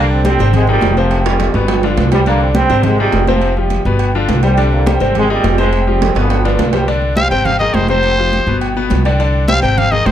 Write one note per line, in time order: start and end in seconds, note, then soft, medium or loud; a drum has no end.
0.00 0.34 C2 loud
0.00 0.20 D3 medium
0.00 0.51 D3 medium
0.00 0.25 G3 medium
0.00 0.20 D4 loud
0.00 0.21 D5 medium
0.11 0.25 C4 medium
0.11 high conga soft
0.25 0.37 G3 medium
0.25 0.53 G3 medium
0.25 0.53 C4 loud
0.25 0.37 G4 medium
0.25 0.37 C5 medium
0.25 high conga medium
0.25 low timbale medium
0.25 low agogo loud
0.39 0.80 G#1 loud
0.39 0.64 C3 medium
0.39 0.64 C4 medium
0.39 0.64 C5 medium
0.39 low agogo medium
0.53 0.68 C3 medium
0.53 1.08 D#3 medium
0.53 0.68 G#3 loud
0.53 high conga soft
0.53 low conga medium
0.53 low agogo loud
0.67 1.09 A#2 medium
0.67 0.96 C3 medium
0.67 0.92 D#3 medium
0.67 0.96 G3 loud
0.67 0.92 D#4 medium
0.67 0.92 G#4 medium
0.67 high conga soft
0.67 low conga medium
0.81 1.49 F1 loud
0.81 high conga medium
0.81 low timbale medium
0.81 low agogo medium
0.97 1.51 G#2 medium
0.97 1.21 C3 medium
0.97 1.26 C3 medium
0.97 1.26 F3 loud
0.97 1.21 C4 medium
0.97 1.21 C5 medium
0.97 low agogo medium
1.11 high conga soft
1.11 high timbale medium
1.11 low agogo loud
1.25 1.67 C3 medium
1.25 1.49 F3 medium
1.25 1.67 G3 medium
1.25 1.50 F4 medium
1.25 1.50 G4 medium
1.25 high conga soft
1.25 high timbale loud
1.40 high conga medium
1.40 high timbale loud
1.40 low agogo medium
1.54 1.95 G1 loud
1.54 1.78 B2 medium
1.54 1.79 B3 medium
1.54 1.79 B4 medium
1.54 high conga soft
1.54 high timbale medium
1.68 high conga soft
1.68 low timbale loud
1.68 low agogo loud
1.83 2.07 D3 medium
1.83 2.07 D4 medium
1.83 2.08 F4 medium
1.83 high conga soft
1.83 low timbale medium
1.97 2.64 C2 loud
1.97 high conga medium
1.97 low timbale medium
1.97 low agogo medium
2.12 2.24 G3 medium
2.12 2.20 G3 medium
2.12 2.24 G4 medium
2.12 2.25 C5 medium
2.12 high conga medium
2.12 low timbale medium
2.12 low agogo loud
2.26 2.80 D3 medium
2.26 2.51 D3 medium
2.26 2.55 G3 medium
2.26 2.40 A#3 loud
2.26 2.51 D4 medium
2.26 2.51 D5 medium
2.26 high conga soft
2.26 low agogo medium
2.41 2.48 C4 medium
2.41 high conga soft
2.55 2.68 G3 medium
2.55 2.83 G3 medium
2.55 2.83 C4 loud
2.55 2.68 G4 medium
2.55 2.68 C5 medium
2.55 high conga medium
2.55 low timbale medium
2.55 low agogo loud
2.70 3.10 G#1 loud
2.70 2.94 C3 medium
2.70 2.94 C4 medium
2.70 2.94 C5 medium
2.70 low agogo medium
2.83 2.98 C3 medium
2.83 3.38 D#3 medium
2.83 2.99 G#3 medium
2.83 high conga soft
2.83 low conga medium
2.83 low agogo loud
2.98 3.40 A#2 medium
2.98 3.27 C3 medium
2.98 3.23 D#3 medium
2.98 3.26 G3 loud
2.98 3.23 D#4 medium
2.98 3.23 G#4 medium
2.98 high conga soft
3.12 3.80 F1 medium
3.12 high conga medium
3.12 low timbale medium
3.12 low agogo medium
3.27 3.81 G#2 medium
3.27 3.51 C3 medium
3.27 3.56 C3 medium
3.27 3.55 F3 medium
3.27 3.52 C4 loud
3.27 3.52 C5 medium
3.27 high conga medium
3.27 low agogo medium
3.41 high conga soft
3.41 low agogo loud
3.57 3.97 C3 medium
3.57 3.80 F3 medium
3.57 4.00 G3 medium
3.57 3.80 F4 medium
3.57 3.81 G4 medium
3.57 high conga soft
3.70 high conga medium
3.70 low timbale medium
3.70 low agogo medium
3.85 4.25 G1 loud
3.85 4.09 B2 medium
3.85 4.09 B3 medium
3.85 4.10 B4 medium
3.85 high conga soft
3.99 high conga soft
3.99 low agogo loud
4.15 4.38 D3 medium
4.15 4.38 D4 medium
4.15 4.39 F4 medium
4.15 high conga soft
4.28 4.95 C2 loud
4.28 high conga medium
4.28 low timbale medium
4.28 low agogo medium
4.43 4.97 C3 medium
4.43 4.71 D3 medium
4.43 4.55 G3 medium
4.43 4.70 G3 loud
4.43 4.55 G4 medium
4.43 4.55 C5 medium
4.43 low agogo loud
4.57 4.81 D3 medium
4.57 4.81 D4 medium
4.57 4.82 D5 medium
4.57 high conga soft
4.57 low agogo medium
4.72 5.12 D3 medium
4.72 5.13 G3 medium
4.72 4.99 A#3 medium
4.72 high conga soft
4.86 4.98 G3 medium
4.86 4.98 G4 medium
4.86 4.98 C5 medium
4.86 high conga medium
4.86 low timbale medium
4.86 low agogo loud
5.00 5.41 G#1 medium
5.00 5.24 C3 medium
5.00 5.25 C4 medium
5.00 5.15 C4 loud
5.00 5.25 C5 medium
5.00 low agogo medium
5.15 5.29 C3 medium
5.15 5.70 D#3 medium
5.15 5.30 G#3 loud
5.15 high conga soft
5.15 low conga medium
5.15 low agogo loud
5.29 5.70 A#2 medium
5.29 5.57 C3 medium
5.29 5.53 D#3 medium
5.29 5.57 G3 loud
5.29 5.54 D#4 medium
5.29 5.54 G#4 medium
5.29 high conga soft
5.44 6.10 F1 loud
5.44 high conga medium
5.44 low timbale medium
5.44 low agogo medium
5.58 5.82 C3 medium
5.58 6.12 C3 medium
5.58 5.85 G#3 loud
5.58 5.82 C4 medium
5.58 5.82 C5 loud
5.58 high conga medium
5.58 low agogo medium
5.73 high conga soft
5.73 low agogo loud
5.87 6.11 F3 medium
5.87 6.28 G3 medium
5.87 6.28 G#3 medium
5.87 6.14 C4 medium
5.87 6.11 F4 medium
5.87 6.11 G4 medium
5.87 high conga soft
6.02 high conga medium
6.02 high timbale medium
6.02 low agogo medium
6.15 6.56 G1 loud
6.15 6.40 B2 medium
6.15 6.70 D3 medium
6.15 6.71 F3 medium
6.15 6.40 B3 medium
6.15 6.70 B3 medium
6.15 6.40 B4 medium
6.15 high conga soft
6.15 high timbale loud
6.30 high conga soft
6.30 low timbale medium
6.30 low agogo loud
6.45 6.68 D3 medium
6.45 6.69 D4 medium
6.45 6.69 F4 medium
6.45 high conga soft
6.45 low timbale medium
6.58 7.26 C2 loud
6.58 high conga medium
6.58 low timbale medium
6.58 low agogo medium
6.73 6.85 G3 medium
6.73 6.86 G4 medium
6.73 6.86 C5 medium
6.73 low timbale medium
6.73 low agogo loud
6.88 7.12 D3 medium
6.88 7.12 D4 medium
6.88 7.12 D5 medium
6.88 high conga soft
6.88 low agogo medium
7.02 high conga soft
7.16 7.29 G3 medium
7.16 7.29 G4 medium
7.16 7.29 C5 medium
7.16 7.30 F5 loud
7.16 high conga loud
7.16 low timbale medium
7.16 low agogo loud
7.31 7.71 G#1 medium
7.31 7.55 C3 medium
7.31 7.55 C4 medium
7.31 7.56 C5 medium
7.31 7.47 G5 medium
7.31 low agogo medium
7.45 7.59 F5 medium
7.45 high conga soft
7.45 low conga medium
7.45 low agogo loud
7.59 7.84 D#3 medium
7.59 7.84 D#4 medium
7.59 7.84 G#4 medium
7.59 7.76 D#5 medium
7.59 high conga soft
7.59 low conga medium
7.74 8.41 F1 medium
7.74 7.88 C5 medium
7.74 high conga medium
7.74 low timbale medium
7.74 low agogo medium
7.88 8.13 C3 medium
7.88 8.13 C4 medium
7.88 8.59 C5 loud
7.88 8.13 C5 medium
7.88 high conga medium
7.88 low agogo medium
8.03 high conga soft
8.03 low agogo loud
8.18 8.42 F3 medium
8.18 8.42 F4 medium
8.18 8.42 G4 medium
8.18 high conga soft
8.33 high conga medium
8.33 low timbale medium
8.33 low agogo medium
8.47 8.87 G1 loud
8.47 8.71 B2 medium
8.47 8.71 B3 medium
8.47 8.72 B4 medium
8.47 high conga soft
8.61 high conga soft
8.61 low agogo loud
8.76 9.00 B2 medium
8.76 9.00 B3 medium
8.76 9.00 B4 medium
8.76 high conga soft
8.90 9.57 C2 loud
8.90 high conga medium
8.90 low timbale medium
8.90 low agogo medium
9.05 9.17 D3 medium
9.05 9.17 D4 medium
9.05 9.18 D5 medium
9.05 low agogo loud
9.19 9.43 D3 medium
9.19 9.44 D4 medium
9.19 9.44 D5 medium
9.19 high conga soft
9.19 low agogo medium
9.33 high conga soft
9.48 9.60 G3 medium
9.48 9.61 G4 medium
9.48 9.61 C5 medium
9.48 9.62 F5 loud
9.48 high conga loud
9.48 low timbale medium
9.48 low agogo loud
9.62 10.03 G#1 medium
9.62 9.87 C3 medium
9.62 9.87 C4 medium
9.62 9.87 C5 medium
9.62 9.80 G5 medium
9.62 low agogo medium
9.78 9.93 F5 medium
9.78 high conga soft
9.78 low conga medium
9.78 low agogo loud
9.92 10.12 D#3 medium
9.92 10.12 D#4 medium
9.92 10.12 G#4 medium
9.92 10.08 D#5 medium
9.92 high conga soft
9.92 low conga medium
10.06 10.12 F1 loud
10.06 10.12 C5 medium
10.06 high conga medium
10.06 low timbale medium
10.06 low agogo medium